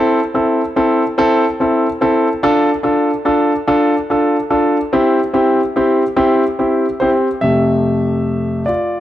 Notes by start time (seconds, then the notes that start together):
Already playing: C4 E4 A4
0.34 C4 E4 A4
0.76 C4 E4 A4
1.18 C4 E4 A4
1.60 C4 E4 A4
2.01 C4 E4 A4
2.43 D4 F4 A4
2.83 D4 F4 A4
3.25 D4 F4 A4
3.67 D4 F4 A4
4.10 D4 F4 A4
4.50 D4 F4 A4
4.93 C4 E4 G4
5.34 C4 E4 G4
5.76 C4 E4 G4
6.16 C4 E4 G4
6.59 C4 E4 G4
7.00 C4 E4 G4 C5
7.41 F2 C3 A3 G4 E5
8.66 F4 D5